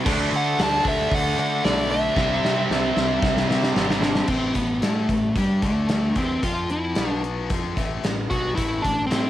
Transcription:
0.06 0.27 D2 loud
0.06 1.36 D3 medium
0.06 1.37 A3 loud
0.06 1.35 D4 loud
0.06 kick loud
0.06 crash loud
0.32 0.54 D3 loud
0.32 open hi-hat medium
0.36 0.58 F#5 loud
0.58 0.80 D2 medium
0.58 snare loud
0.58 open hi-hat medium
0.63 0.85 A5 loud
0.85 1.07 D2 medium
0.85 1.13 E5 loud
0.85 kick medium
0.85 open hi-hat medium
1.11 1.33 D2 medium
1.11 1.38 F#5 medium
1.11 kick loud
1.11 open hi-hat medium
1.37 1.60 D3 medium
1.37 1.62 D3 medium
1.37 1.62 A3 medium
1.37 1.62 D4 medium
1.37 1.63 F#5 loud
1.37 open hi-hat medium
1.63 2.08 B1 medium
1.63 2.15 D3 medium
1.63 2.15 A3 medium
1.63 2.16 D4 medium
1.63 1.91 D5 loud
1.63 snare loud
1.63 open hi-hat medium
1.90 3.73 E5 medium
1.90 open hi-hat medium
2.15 2.38 C2 loud
2.15 3.47 C3 medium
2.15 3.48 G3 medium
2.15 3.47 C4 loud
2.15 kick loud
2.15 snare medium
2.44 2.65 C3 medium
2.44 snare medium
2.70 2.92 C2 loud
2.70 snare medium
2.96 3.18 C2 medium
2.96 snare medium
3.22 3.45 C2 medium
3.22 kick loud
3.22 snare medium
3.37 snare medium
3.48 3.71 C3 loud
3.48 3.73 C3 medium
3.48 3.75 G3 medium
3.48 3.74 C4 medium
3.48 snare medium
3.63 snare medium
3.74 4.20 G#1 medium
3.74 4.27 C3 medium
3.74 4.27 G3 medium
3.74 4.28 C4 medium
3.74 snare loud
3.90 snare medium
4.01 4.26 D4 medium
4.01 snare loud
4.15 snare loud
4.28 4.54 A1 medium
4.28 4.54 A2 medium
4.28 4.55 E3 medium
4.28 4.55 A3 medium
4.28 4.55 C4 medium
4.28 kick loud
4.28 crash medium
4.55 4.81 A1 medium
4.55 4.77 A2 medium
4.55 4.78 E3 medium
4.55 4.81 B3 medium
4.55 kick medium
4.55 closed hi-hat medium
4.82 5.07 A2 medium
4.82 5.08 A3 medium
4.82 5.33 A3 medium
4.82 5.08 E4 medium
4.82 5.09 A4 medium
4.82 snare loud
4.82 closed hi-hat medium
5.09 5.34 A1 medium
5.09 5.31 A2 medium
5.09 5.31 E3 medium
5.09 kick medium
5.09 closed hi-hat medium
5.36 5.61 G2 medium
5.36 5.62 G3 medium
5.36 5.62 D4 medium
5.36 5.63 G4 medium
5.36 kick medium
5.36 closed hi-hat medium
5.62 6.12 D2 medium
5.62 6.15 D3 medium
5.62 6.18 A3 medium
5.62 6.16 A3 medium
5.62 6.16 D4 medium
5.62 kick medium
5.62 closed hi-hat medium
5.89 snare loud
5.89 closed hi-hat medium
6.15 6.41 E2 medium
6.15 6.42 E3 medium
6.15 6.42 B3 medium
6.15 6.42 C4 medium
6.15 6.42 E4 loud
6.15 kick medium
6.15 closed hi-hat medium
6.43 6.93 F2 medium
6.43 6.96 F3 medium
6.43 6.96 C4 medium
6.43 6.71 F4 medium
6.43 6.96 F4 loud
6.43 kick medium
6.43 closed hi-hat medium
6.70 7.21 E4 medium
6.70 closed hi-hat medium
6.95 7.47 B1 medium
6.95 7.50 B2 medium
6.95 7.50 F#3 medium
6.95 7.50 B3 medium
6.95 snare loud
6.95 closed hi-hat medium
7.24 closed hi-hat medium
7.50 7.75 F2 medium
7.50 7.77 F3 medium
7.50 7.77 C4 medium
7.50 7.77 F4 medium
7.50 kick loud
7.50 closed hi-hat medium
7.77 8.02 A1 medium
7.77 8.03 A2 medium
7.77 8.03 E3 medium
7.77 8.03 A3 medium
7.77 kick loud
7.77 closed hi-hat medium
8.04 8.29 A1 medium
8.04 8.26 A2 medium
8.04 8.26 E3 medium
8.04 snare loud
8.04 closed hi-hat medium
8.30 8.56 B1 medium
8.30 8.57 B2 medium
8.30 8.57 F#3 loud
8.30 8.57 B3 medium
8.30 8.55 F#4 medium
8.30 kick medium
8.30 closed hi-hat soft
8.55 8.82 A1 medium
8.55 8.83 A2 medium
8.55 8.84 E3 medium
8.55 8.84 A3 medium
8.55 8.81 E4 medium
8.55 kick medium
8.55 closed hi-hat medium
8.82 9.10 A1 medium
8.82 9.06 A2 medium
8.82 9.06 E3 medium
8.82 9.06 D4 medium
8.82 kick medium
8.82 closed hi-hat medium
9.06 9.30 A2 medium
9.06 9.30 C4 medium
9.11 9.30 A3 medium
9.11 9.30 E4 medium
9.11 9.30 A4 medium
9.11 snare loud
9.11 closed hi-hat medium

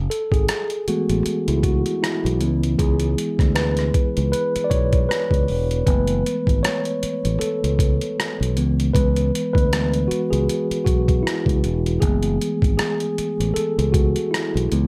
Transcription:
0.10 0.20 A4 medium
0.10 closed hi-hat medium
0.32 0.47 G#1 medium
0.32 0.89 G#4 medium
0.32 kick medium
0.32 closed hi-hat soft
0.49 cross-stick loud
0.49 closed hi-hat medium
0.70 closed hi-hat soft
0.88 2.37 E3 soft
0.88 2.37 G#3 soft
0.88 2.38 A3 soft
0.88 2.38 B3 medium
0.88 1.44 F#4 medium
0.88 muted fingered electric bass stroke soft
0.88 closed hi-hat medium
1.10 1.24 A1 medium
1.10 closed hi-hat soft
1.26 muted fingered electric bass stroke soft
1.26 closed hi-hat medium
1.48 1.83 C#2 medium
1.48 1.55 E4 medium
1.48 closed hi-hat soft
1.63 1.99 F#4 medium
1.63 kick medium
1.63 closed hi-hat medium
1.86 closed hi-hat soft
2.03 2.82 E4 medium
2.03 cross-stick loud
2.03 closed hi-hat medium
2.25 2.41 B1 medium
2.25 closed hi-hat soft
2.41 2.76 C#2 medium
2.41 2.94 E3 soft
2.41 2.94 G#3 soft
2.41 2.95 B3 medium
2.41 closed hi-hat soft
2.63 closed hi-hat soft
2.78 3.14 C#2 medium
2.78 3.58 G#4 medium
2.78 kick medium
2.78 closed hi-hat medium
3.00 closed hi-hat soft
3.18 closed hi-hat medium
3.39 3.91 D2 medium
3.39 kick medium
3.39 cross-stick soft
3.39 closed hi-hat soft
3.55 4.31 B4 medium
3.55 cross-stick loud
3.55 closed hi-hat medium
3.77 cross-stick soft
3.77 closed hi-hat soft
3.94 muted fingered electric bass stroke soft
3.94 kick medium
3.94 closed hi-hat medium
4.17 4.32 C#2 medium
4.17 closed hi-hat soft
4.32 4.66 B4 medium
4.32 closed hi-hat medium
4.56 muted fingered electric bass stroke soft
4.56 closed hi-hat soft
4.64 4.71 D5 medium
4.70 5.07 B1 medium
4.70 5.10 C#5 medium
4.70 kick medium
4.70 closed hi-hat medium
4.93 kick medium
4.93 closed hi-hat soft
5.09 5.85 B4 medium
5.09 cross-stick loud
5.09 closed hi-hat medium
5.31 5.47 C#2 medium
5.31 kick medium
5.31 closed hi-hat soft
5.48 5.84 E1 medium
5.48 open hi-hat soft
5.71 closed hi-hat soft
5.86 6.22 F#1 medium
5.86 6.98 E3 soft
5.86 6.99 G#3 soft
5.86 6.99 A3 soft
5.86 6.99 B3 medium
5.86 6.59 B4 medium
5.86 kick loud
5.86 closed hi-hat medium
6.07 closed hi-hat soft
6.26 closed hi-hat medium
6.47 6.62 G#1 medium
6.47 kick medium
6.47 closed hi-hat soft
6.63 7.36 C#5 medium
6.63 cross-stick loud
6.63 closed hi-hat medium
6.85 closed hi-hat soft
7.03 muted fingered electric bass stroke soft
7.03 closed hi-hat medium
7.25 7.40 A1 medium
7.25 closed hi-hat soft
7.40 8.52 A4 medium
7.40 muted fingered electric bass stroke soft
7.40 closed hi-hat medium
7.64 7.98 C#2 medium
7.64 closed hi-hat soft
7.79 kick medium
7.79 closed hi-hat medium
8.01 closed hi-hat soft
8.20 cross-stick loud
8.20 closed hi-hat medium
8.41 8.57 B1 medium
8.41 closed hi-hat soft
8.57 8.92 C#2 medium
8.57 9.10 E3 soft
8.57 9.10 G#3 soft
8.57 9.10 B3 medium
8.57 closed hi-hat soft
8.80 closed hi-hat soft
8.94 9.30 C#2 medium
8.94 9.52 B4 medium
8.94 kick loud
8.94 closed hi-hat medium
9.16 closed hi-hat soft
9.35 closed hi-hat medium
9.53 10.06 D2 medium
9.53 10.11 B4 medium
9.53 kick medium
9.58 closed hi-hat soft
9.72 10.06 E3 soft
9.72 10.07 G#3 soft
9.72 10.07 B3 soft
9.72 cross-stick loud
9.72 closed hi-hat medium
9.94 closed hi-hat soft
10.08 10.31 F#4 medium
10.08 muted fingered electric bass stroke soft
10.08 closed hi-hat medium
10.31 10.47 C#2 medium
10.31 10.82 G#4 medium
10.31 closed hi-hat soft
10.49 closed hi-hat medium
10.71 muted fingered electric bass stroke soft
10.71 closed hi-hat soft
10.85 11.22 B1 medium
10.85 11.25 F#4 medium
10.85 kick medium
10.85 closed hi-hat medium
11.08 kick medium
11.08 closed hi-hat soft
11.23 12.03 E4 medium
11.27 cross-stick loud
11.27 closed hi-hat medium
11.46 11.62 C#2 medium
11.46 kick medium
11.46 closed hi-hat soft
11.64 11.99 E1 medium
11.64 closed hi-hat soft
11.86 closed hi-hat soft
12.00 12.37 F#1 medium
12.00 12.56 E3 soft
12.00 12.56 G#3 soft
12.00 12.56 A3 soft
12.00 12.56 B3 medium
12.00 12.76 G#4 medium
12.00 kick medium
12.00 closed hi-hat medium
12.23 closed hi-hat soft
12.41 closed hi-hat medium
12.62 12.78 G#1 medium
12.62 kick medium
12.62 closed hi-hat soft
12.77 13.57 G#4 medium
12.77 cross-stick loud
12.77 closed hi-hat medium
13.00 closed hi-hat soft
13.18 muted fingered electric bass stroke soft
13.18 closed hi-hat medium
13.40 13.55 A1 medium
13.40 closed hi-hat soft
13.54 13.95 A4 medium
13.54 muted fingered electric bass stroke soft
13.54 closed hi-hat medium
13.78 14.13 C#2 medium
13.78 closed hi-hat soft
13.92 14.29 F#4 medium
13.92 kick medium
13.92 closed hi-hat medium
14.16 closed hi-hat soft
14.31 14.87 E4 medium
14.31 cross-stick loud
14.31 closed hi-hat medium
14.55 14.70 B1 medium
14.55 closed hi-hat soft
14.72 14.87 C#2 medium
14.72 14.87 E3 soft
14.72 14.87 G#3 soft
14.72 14.87 B3 medium
14.72 closed hi-hat soft

